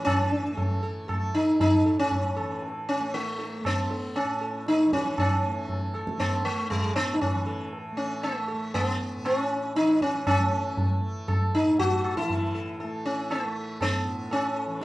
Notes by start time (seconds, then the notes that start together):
Already playing: A2 E3 A3
0.05 C#4, tabla na, tabla ge
0.52 A3
0.57 A4, tabla tin, tabla ge
0.83 A4
1.08 A4, tabla na, tabla ge
1.13 A3
1.35 D#4
1.60 D#4, tabla tin, tabla ge
1.75 A2
1.86 A4
1.99 C#4
2.11 tabla tin, tabla ge
2.36 E3 A4, tabla na
2.63 tabla tin
2.89 C#4
3.00 A3
3.14 A3, tabla te
3.38 A4, tabla te
3.61 A3
3.65 B3, tabla na, tabla ge
3.90 A4, tabla te
4.16 C#4, tabla na
4.24 A2
4.41 A4
4.67 D#4, tabla te
4.80 tabla te
4.85 E3
4.93 C#4, tabla ke
5.06 tabla te
5.18 C#4, tabla na, tabla ge
5.47 A3
5.69 tabla tin, tabla ge
5.94 A4, tabla na
6.07 A3, tabla ke
6.20 B3, tabla na, tabla ge
6.45 A3
6.70 A2 G#3, tabla tin, tabla ge
6.96 B3, tabla na
7.14 D#4
7.21 C#4, tabla tin, tabla ge
7.32 E3
7.46 A4
7.73 tabla tin
7.92 A3
7.97 C#4
8.23 A3, tabla na
8.48 A4
8.54 A3
8.74 B3, tabla na, tabla ge
9.16 A2
9.25 C4, tabla na
9.41 C#4
9.76 E3 D#4, tabla te
9.88 tabla te
10.01 C#4, tabla ke
10.14 tabla te
10.27 C#4, tabla na, tabla ge
10.40 A3
10.77 tabla tin, tabla ge
11.00 A3
11.28 A4, tabla na, tabla ge
11.55 D#4
11.62 A2
11.79 F#4, tabla tin, tabla ge
12.05 tabla na
12.17 E4, tabla ke
12.22 E3
12.29 tabla tin, tabla ge
12.55 A4
12.80 A3 A4, tabla tin
13.06 C#4
13.30 A3 A4, tabla na
13.45 A3
13.81 B3 A4, tabla na, tabla ge
14.06 A2
14.31 C#4 A4, tabla na
14.56 A4
14.66 E3
14.81 tabla te